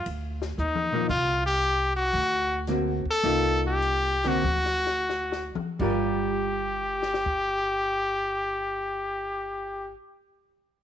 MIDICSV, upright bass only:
0, 0, Header, 1, 3, 480
1, 0, Start_track
1, 0, Key_signature, -2, "minor"
1, 0, Tempo, 522648
1, 1003, Time_signature, 4, 2, 24, 8
1, 2459, Tempo, 572519
1, 3419, Tempo, 616016
1, 3899, Tempo, 655738
1, 4379, Tempo, 705882
1, 4859, Tempo, 733496
1, 8153, End_track
2, 0, Start_track
2, 0, Title_t, "Upright bass"
2, 0, Program_c, 0, 32
2, 55, Note_on_c, 0, 38, 80
2, 515, Note_off_c, 0, 38, 0
2, 532, Note_on_c, 0, 39, 75
2, 989, Note_off_c, 0, 39, 0
2, 1005, Note_on_c, 0, 36, 80
2, 1926, Note_off_c, 0, 36, 0
2, 1959, Note_on_c, 0, 38, 86
2, 2740, Note_off_c, 0, 38, 0
2, 2927, Note_on_c, 0, 36, 77
2, 3866, Note_off_c, 0, 36, 0
2, 3895, Note_on_c, 0, 38, 79
2, 4672, Note_off_c, 0, 38, 0
2, 4856, Note_on_c, 0, 31, 76
2, 7561, Note_off_c, 0, 31, 0
2, 8153, End_track
3, 0, Start_track
3, 0, Title_t, "Muted upright bass strokes"
3, 2774, Note_on_c, 9, 29, 38
3, 2858, Note_off_c, 9, 29, 0
3, 4699, Note_on_c, 9, 29, 34
3, 4767, Note_off_c, 9, 29, 0
3, 8153, End_track
0, 0, End_of_file